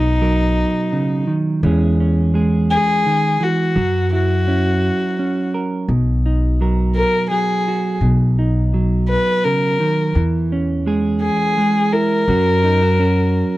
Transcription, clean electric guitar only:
0.00 1.58 B2 medium
0.00 0.20 F#3 medium
0.00 1.59 D#4 soft
0.21 1.63 F#3 soft
0.21 1.59 A#4 soft
0.92 1.27 C#3 soft
1.27 1.63 D#3 medium
1.63 3.05 E3 medium
1.63 2.33 G#3 medium
1.63 2.00 C#4 medium
1.63 2.34 G#4 medium
2.00 3.72 C#4 soft
2.34 3.72 G#3 soft
2.34 3.76 G#4 soft
3.06 3.40 D#3 medium
3.40 3.76 E3 soft
3.76 6.60 F#3 medium
4.13 4.47 E4 soft
4.48 5.18 C#4 soft
4.48 5.85 E4 soft
5.19 5.85 C#4 soft
5.54 5.92 A#4 medium
5.89 7.98 B2 medium
6.26 7.98 D#4 soft
6.61 7.30 F#3 soft
6.61 7.98 A#4 soft
7.31 8.73 F#3 soft
7.68 7.99 F#4 soft
8.02 10.11 B2 medium
8.39 10.12 D#4 soft
8.74 10.16 F#3 soft
9.45 9.80 C#3 soft
9.80 10.15 D#3 medium
10.16 12.24 E3 medium
10.52 12.25 C#4 soft
10.86 11.56 G#3 soft
10.86 12.29 G#4 medium
11.58 12.24 G#3 medium
11.93 12.24 E4 medium
12.29 13.57 F#3 medium
12.29 12.98 C#4 soft
12.29 12.63 F#4 medium
12.64 12.82 D#4 soft
12.82 12.99 F#4 soft
12.99 13.57 C#4 medium
12.99 13.57 F#4 soft

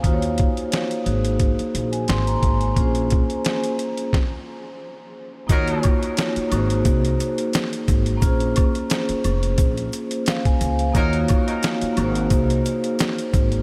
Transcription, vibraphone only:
0.00 1.01 A#3 medium
0.00 1.03 D#4 medium
0.00 0.21 F5 medium
0.04 1.06 F4 medium
0.04 1.05 F#4 medium
0.04 0.12 C5 medium
0.13 1.11 C#5 medium
1.02 2.71 A#3 medium
1.02 2.72 D#4 medium
1.07 2.73 F#4 medium
1.07 2.75 G#4 medium
1.11 2.76 C5 medium
1.92 2.07 G#5 medium
2.09 2.26 C6 medium
2.26 2.59 A#5 medium
2.61 2.94 G#5 medium
2.73 4.08 A#3 medium
2.73 4.09 C#4 medium
2.77 4.11 F4 medium
2.77 4.12 G#4 medium
2.82 4.13 C5 medium
5.47 6.46 A#3 medium
5.47 6.48 D#4 medium
5.47 6.52 F4 medium
5.47 6.51 F#4 medium
5.51 6.53 C#5 medium
6.47 8.16 A#3 medium
6.47 8.18 D#4 medium
6.52 8.19 F#4 medium
6.52 8.20 G#4 medium
6.57 8.21 C5 medium
8.18 10.20 A#3 medium
8.18 10.22 C#4 medium
8.22 10.23 F4 medium
8.22 10.24 G#4 medium
8.27 10.25 C5 medium
10.27 10.45 F5 medium
10.46 10.78 G#5 medium
10.79 11.12 F5 medium
10.92 11.91 A#3 medium
10.92 11.94 D#4 medium
10.92 11.97 F4 medium
10.92 11.96 F#4 medium
10.97 11.98 C#5 medium
11.93 13.62 A#3 medium
11.93 13.62 D#4 medium
11.97 13.62 F#4 medium
11.97 13.62 G#4 medium
12.02 13.62 C5 medium

